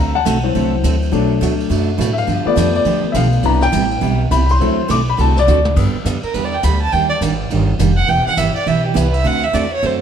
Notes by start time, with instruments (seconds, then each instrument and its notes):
Already playing: upright bass D2, steel-string acoustic guitar D3 A3 C4 F#4 A4, upright piano A#5
0.15 upright piano F#5 A5
0.25 upright bass B1, steel-string acoustic guitar D3 A3 C4 F#4 A4, hi-hat pedal, ride
0.43 upright piano E3 F#3 C4
0.55 upright bass C2, steel-string acoustic guitar D3 A3 C4 F#4 A4, ride
0.83 upright bass D2, steel-string acoustic guitar D3 A3 C4 F#4 A4, hi-hat pedal, ride
1.02 ride
1.12 upright bass B1, steel-string acoustic guitar B2 F#3 A3 D4 F#4, upright piano F#3 A3 D4, ride
1.41 upright bass D2, steel-string acoustic guitar B2 F#3 A3 D4 F#4, hi-hat pedal, ride
1.60 ride
1.69 upright bass F#2, steel-string acoustic guitar B2 F#3 A3 D4 F#4, ride
1.98 upright bass A2, steel-string acoustic guitar B2 F#3 A3 D4 F#4, hi-hat pedal, ride
2.13 upright piano E5
2.17 upright piano F5, ride
2.27 upright bass G2, steel-string acoustic guitar D3 F3 B3 D4 G4, ride
2.45 upright piano F3 A3 B3 D5, muted upright bass stroke
2.56 upright bass F2, steel-string acoustic guitar D3 F3 B3 D4 G4, upright piano D5, hi-hat pedal, ride
2.75 upright piano D5, ride
2.85 upright bass D2, steel-string acoustic guitar D3 F3 B3 D4 G4, ride
3.03 muted upright bass stroke
3.12 upright bass B1, steel-string acoustic guitar D3 F3 B3 D4, upright piano E5, hi-hat pedal, ride
3.16 steel-string acoustic guitar G4, upright piano F5
3.32 ride
3.43 upright bass C2, steel-string acoustic guitar C3 G3 B3 E4 G4, upright piano E3 B3 D4 A#5, ride
3.61 upright piano G5, snare
3.72 upright bass A1, steel-string acoustic guitar C3 G3 B3 E4 G4, hi-hat pedal, ride
3.91 ride
4.01 upright bass B1, steel-string acoustic guitar C3 G3 B3 E4 G4, ride
4.31 upright bass C2, steel-string acoustic guitar C3 G3 B3 E4 G4, upright piano B5, hi-hat pedal, ride
4.46 upright piano B5, ride
4.51 upright piano C6
4.60 upright bass D2, steel-string acoustic guitar D3 A3 C4 F#4 A4, upright piano F#3 C4 E4, ride
4.88 upright bass B1, steel-string acoustic guitar D3 A3 C4 F#4 A4, upright piano D6, hi-hat pedal, ride
5.07 upright piano B5, ride
5.17 upright bass C2, steel-string acoustic guitar D3 A3 C4 F#4 A4, upright piano A5, ride
5.36 upright piano D5, snare
5.47 upright bass D2, steel-string acoustic guitar D3 A3 C4 F#4 A4, upright piano D5, hi-hat pedal
5.65 mid tom
5.76 upright bass G2, steel-string acoustic guitar D3 G3 B3 D4 G4, kick, crash
5.93 muted upright bass stroke
6.05 upright bass F#2, steel-string acoustic guitar D3 G3 B3 D4 G4, hi-hat pedal, ride
6.23 fiddle A#4, muted upright bass stroke, ride
6.34 upright bass E2, steel-string acoustic guitar D3 G3 B3 D4 G4, fiddle B4, ride
6.44 fiddle D5
6.54 fiddle G5
6.63 upright bass D2, steel-string acoustic guitar D3 G3 B3 D4 G4, fiddle B5, hi-hat pedal, ride
6.81 fiddle A5
6.92 upright bass D#2, steel-string acoustic guitar D#3 G3 A#3 D4 G4, fiddle G5, ride
7.09 fiddle D5
7.21 upright bass G#1, steel-string acoustic guitar D#3 G3 A#3 D4 G4, hi-hat pedal, ride
7.50 upright bass G1, steel-string acoustic guitar D#3 G3 A#3 D4 G4, ride
7.79 upright bass F1, steel-string acoustic guitar D#3 G3 A#3 D4 G4, hi-hat pedal, ride
7.97 fiddle F#5
8.07 upright bass E1, steel-string acoustic guitar E3 B3 E4 G4, fiddle G5, ride
8.26 fiddle F#5, muted upright bass stroke
8.37 upright bass G1, steel-string acoustic guitar E3 B3 E4 G4, fiddle E5, hi-hat pedal, ride
8.55 fiddle D5, muted upright bass stroke, ride
8.66 upright bass B1, steel-string acoustic guitar E3 B3 E4 G4, fiddle E5, ride
8.85 fiddle G4
8.94 upright bass C2, steel-string acoustic guitar E3 B3 E4 G4, fiddle B4, hi-hat pedal, ride
9.14 fiddle E5, ride
9.24 upright bass D2, steel-string acoustic guitar D3 A3 C4 F#4 A4, fiddle F#5, ride
9.43 fiddle E5
9.53 upright bass E2, steel-string acoustic guitar D3 A3 C4 F#4 A4, fiddle D5, hi-hat pedal, ride
9.73 fiddle C#5
9.82 upright bass F#2, steel-string acoustic guitar D3 A3 C4 F#4 A4, fiddle C5, ride